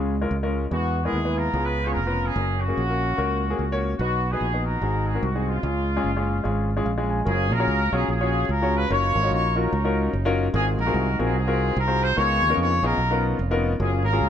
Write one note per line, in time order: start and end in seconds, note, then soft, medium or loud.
0.00 0.25 C#2 medium
0.00 0.51 C#3 medium
0.00 0.14 G#3 medium
0.00 0.13 C#4 medium
0.00 0.14 F4 medium
0.00 0.14 G#4 medium
0.22 0.34 G#3 medium
0.22 0.34 C#4 medium
0.22 0.34 F4 medium
0.22 0.34 A#4 medium
0.31 0.66 C#2 medium
0.43 0.63 G#3 medium
0.43 0.63 C#4 medium
0.43 0.64 F4 medium
0.43 0.63 A#4 medium
0.71 1.06 E2 loud
0.71 1.33 E3 soft
0.71 0.96 G#3 medium
0.71 0.96 B3 medium
0.71 1.04 B3 medium
0.71 0.96 E4 soft
0.71 1.02 F#4 medium
0.71 0.96 G#4 medium
1.04 1.17 G#3 medium
1.04 1.50 B3 medium
1.04 1.17 B3 medium
1.04 1.50 E4 medium
1.04 1.17 E4 medium
1.04 1.38 G#4 medium
1.04 1.17 A#4 medium
1.13 1.48 D#2 medium
1.25 1.45 G#3 medium
1.25 1.46 B3 medium
1.25 1.46 E4 medium
1.25 1.46 B4 medium
1.37 1.91 F4 medium
1.37 1.66 A#4 medium
1.53 1.96 C#2 medium
1.53 2.16 C#3 medium
1.53 1.78 B3 medium
1.53 1.79 C#4 medium
1.53 1.79 F4 medium
1.53 1.79 G#4 medium
1.65 1.86 B4 medium
1.84 1.98 B3 medium
1.84 1.99 C#4 medium
1.84 1.99 F4 medium
1.84 1.99 G#4 medium
1.84 1.93 C#5 medium
1.91 2.30 F1 medium
1.91 2.32 F4 medium
1.91 2.26 A#4 loud
2.06 2.27 B3 medium
2.06 2.27 C#4 medium
2.06 2.27 F4 medium
2.06 2.27 B4 medium
2.25 2.59 C#4 medium
2.25 2.60 G#4 medium
2.36 2.71 F#1 loud
2.36 2.60 A#3 medium
2.36 2.61 C#4 medium
2.36 2.61 F#4 medium
2.36 2.61 A#4 medium
2.59 3.80 A#3 medium
2.59 3.80 C#4 medium
2.59 3.83 F#4 medium
2.68 2.80 A#3 medium
2.68 2.81 C#4 medium
2.68 2.81 F#4 medium
2.68 2.81 G#4 medium
2.77 3.12 A#1 medium
2.90 3.10 A#3 medium
2.90 3.10 C#4 medium
2.90 3.10 F#4 medium
2.90 3.10 A#4 medium
3.17 3.53 C#2 medium
3.17 3.42 A#3 medium
3.17 3.42 C#4 medium
3.17 3.42 F#4 medium
3.17 3.42 A#4 medium
3.50 3.62 A#3 medium
3.50 3.62 C#4 medium
3.50 3.62 F#4 medium
3.50 3.62 G#4 medium
3.59 3.94 C#2 medium
3.72 3.92 A#3 medium
3.72 3.92 C#4 medium
3.72 3.92 F#4 medium
3.72 3.92 C#5 loud
3.98 4.34 B1 loud
3.98 4.62 B2 medium
3.98 4.31 B3 medium
3.98 4.25 B3 medium
3.98 4.32 D#4 medium
3.98 4.25 D#4 medium
3.98 4.29 F#4 medium
3.98 4.25 F#4 medium
3.98 4.25 B4 medium
4.31 4.78 B3 medium
4.31 4.45 B3 medium
4.31 4.64 D#4 medium
4.31 4.45 D#4 medium
4.31 4.45 F#4 medium
4.31 4.65 G#4 medium
4.31 4.45 B4 medium
4.41 4.76 A#1 medium
4.53 4.73 B3 medium
4.53 4.74 D#4 medium
4.53 4.74 F#4 medium
4.53 4.74 B4 medium
4.64 5.44 D#4 medium
4.64 5.20 F#4 medium
4.64 5.06 A#4 medium
4.81 5.16 G#1 medium
4.81 5.44 G#2 medium
4.81 5.06 C4 medium
4.81 5.07 D#4 medium
4.81 5.07 F#4 medium
4.81 5.07 G#4 medium
5.05 5.22 G#4 medium
5.15 5.26 C4 medium
5.15 5.27 D#4 medium
5.15 5.27 F#4 medium
5.15 5.27 A#4 medium
5.21 5.57 C2 medium
5.21 5.47 F#4 medium
5.35 5.55 C4 medium
5.35 5.55 D#4 medium
5.35 5.55 F#4 medium
5.35 5.56 G#4 medium
5.47 6.83 G#3 medium
5.47 6.83 C#4 medium
5.47 6.86 F4 medium
5.63 5.98 C#2 loud
5.63 6.26 C#3 soft
5.63 5.88 G#3 medium
5.63 5.88 C#4 medium
5.63 5.88 F4 medium
5.63 5.88 G#4 medium
5.97 6.08 G#3 medium
5.97 6.08 C#4 medium
5.97 6.08 F4 medium
5.97 6.08 G#4 medium
6.04 6.39 F#1 medium
6.17 6.37 G#3 medium
6.17 6.37 C#4 medium
6.17 6.37 F4 medium
6.17 6.37 G#4 medium
6.44 6.80 G#1 medium
6.44 6.69 G#3 medium
6.44 6.69 C#4 medium
6.44 6.69 F4 medium
6.44 6.69 G#4 medium
6.76 6.89 G#3 medium
6.76 6.89 C#4 medium
6.76 6.89 F4 medium
6.76 6.90 G#4 medium
6.85 7.21 A#1 medium
6.85 7.09 F5 medium
6.98 7.18 G#3 medium
6.98 7.19 C#4 medium
6.98 7.18 F4 medium
6.98 7.19 G#4 medium
7.10 7.25 G#5 medium
7.25 7.52 F#1 loud
7.25 7.51 C#4 medium
7.25 7.53 C#4 medium
7.25 7.51 F4 medium
7.25 7.52 F4 medium
7.25 7.51 F#4 medium
7.25 7.51 G#4 medium
7.25 7.51 A#4 medium
7.52 7.65 A#1 medium
7.52 8.09 C#4 medium
7.52 8.08 F4 medium
7.52 7.94 A#4 loud
7.59 7.80 C#4 medium
7.59 7.80 F4 medium
7.59 7.80 F#4 medium
7.59 7.80 G#4 medium
7.59 7.80 C#5 medium
7.67 7.89 C#2 medium
7.92 8.06 B1 medium
7.92 8.08 C#4 medium
7.92 8.08 F4 medium
7.92 8.08 F#4 medium
7.92 8.08 G#4 medium
7.92 8.08 C#5 medium
8.08 8.43 A#1 medium
8.08 8.87 C#4 medium
8.08 8.87 F4 medium
8.08 8.47 G#4 medium
8.21 8.46 C#4 medium
8.21 8.46 F4 medium
8.21 8.46 F#4 medium
8.21 8.47 G#4 medium
8.21 8.46 C#5 medium
8.49 8.84 C#2 medium
8.49 8.75 A#4 loud
8.62 8.82 C#4 medium
8.62 8.83 F4 medium
8.62 8.82 F#4 medium
8.62 8.82 G#4 medium
8.62 8.83 C#5 medium
8.76 8.91 B4 loud
8.90 9.12 F#1 loud
8.90 9.15 C#4 medium
8.90 9.15 D#4 medium
8.90 9.15 F4 medium
8.90 9.69 F4 medium
8.90 9.15 F#4 medium
8.90 9.15 A#4 medium
8.90 9.58 A#4 medium
8.90 9.32 C#5 loud
9.15 9.29 G#1 medium
9.23 9.43 C#4 medium
9.23 9.43 D#4 medium
9.23 9.43 F4 medium
9.23 9.43 F#4 medium
9.23 9.43 C#5 medium
9.31 9.66 A#1 loud
9.31 9.55 C#5 loud
9.56 9.71 C#4 medium
9.56 10.35 C#4 medium
9.56 9.71 D#4 medium
9.56 10.35 D#4 medium
9.56 9.72 F4 medium
9.56 9.72 F#4 medium
9.56 9.72 A#4 medium
9.56 9.99 A#4 medium
9.72 10.07 C#2 loud
9.84 10.10 C#4 medium
9.84 10.10 D#4 medium
9.84 10.10 F4 medium
9.84 10.10 F#4 medium
9.84 10.10 A#4 medium
10.13 10.48 F#1 medium
10.25 10.45 C#4 loud
10.25 10.46 D#4 medium
10.25 10.46 F4 medium
10.25 10.46 F#4 medium
10.25 10.46 A#4 loud
10.53 10.75 G#1 loud
10.53 11.15 G#2 medium
10.53 10.78 C4 medium
10.53 11.32 C4 medium
10.53 10.77 D#4 medium
10.53 10.78 F4 medium
10.53 10.78 F#4 medium
10.53 10.78 G#4 medium
10.53 10.65 G#4 medium
10.53 10.79 A#4 medium
10.78 10.92 A#1 medium
10.78 11.35 D#4 medium
10.78 11.56 F#4 medium
10.78 11.17 A#4 medium
10.86 11.07 C4 medium
10.86 11.07 F4 medium
10.86 11.06 F#4 medium
10.86 11.07 G#4 medium
10.86 11.07 A#4 medium
10.94 11.16 C2 medium
11.19 11.35 A#1 medium
11.19 11.35 C4 medium
11.19 11.35 F4 medium
11.19 11.35 F#4 medium
11.19 11.35 G#4 medium
11.19 11.36 G#4 medium
11.19 11.35 A#4 medium
11.35 11.70 C2 medium
11.35 12.13 C4 medium
11.35 12.13 D#4 medium
11.35 11.74 G#4 medium
11.47 11.73 C4 medium
11.47 11.73 F4 medium
11.47 11.73 F#4 medium
11.47 11.73 G#4 medium
11.47 11.73 A#4 medium
11.77 12.11 C2 loud
11.77 12.02 A#4 loud
11.87 12.08 C4 medium
11.87 12.08 F4 medium
11.87 12.08 F#4 medium
11.87 12.08 G#4 medium
11.87 12.08 C5 medium
12.03 12.18 C5 loud
12.16 12.39 C#2 loud
12.16 12.78 C#3 medium
12.16 12.41 B3 medium
12.16 12.41 C#4 medium
12.16 12.41 D#4 medium
12.16 12.41 F4 medium
12.16 12.83 F4 medium
12.16 12.95 G#4 medium
12.16 12.41 A#4 medium
12.16 12.58 C#5 loud
12.42 12.55 D#2 medium
12.50 12.70 B3 medium
12.50 12.70 C#4 medium
12.50 12.70 D#4 medium
12.50 12.70 F4 medium
12.50 12.70 A#4 medium
12.57 12.79 F2 medium
12.57 12.82 C#5 loud
12.82 12.96 A#1 loud
12.82 12.98 B3 medium
12.82 12.98 C#4 medium
12.82 12.99 D#4 medium
12.82 13.61 D#4 medium
12.82 12.98 F4 medium
12.82 13.61 F4 medium
12.82 12.98 G#4 medium
12.82 13.24 A#4 medium
12.98 13.33 B1 loud
13.11 13.36 B3 medium
13.11 13.36 C#4 medium
13.11 13.36 D#4 medium
13.11 13.36 F4 medium
13.11 13.36 A#4 medium
13.39 13.74 F1 loud
13.51 13.71 B3 medium
13.51 13.71 C#4 medium
13.51 13.72 D#4 medium
13.51 13.71 F4 medium
13.51 13.72 A#4 loud
13.79 14.05 F#1 loud
13.79 14.04 A#3 medium
13.79 14.04 C#4 medium
13.79 14.05 C#4 medium
13.79 14.04 F4 medium
13.79 14.04 F#4 medium
13.79 14.04 G#4 medium
14.04 14.18 G#1 medium
14.04 14.29 C#4 medium
14.04 14.29 F4 medium
14.04 14.29 A#4 medium
14.12 14.29 A#3 medium
14.12 14.29 C#4 medium
14.12 14.29 F4 medium
14.12 14.29 F#4 medium
14.12 14.29 G#4 medium
14.21 14.29 C#2 medium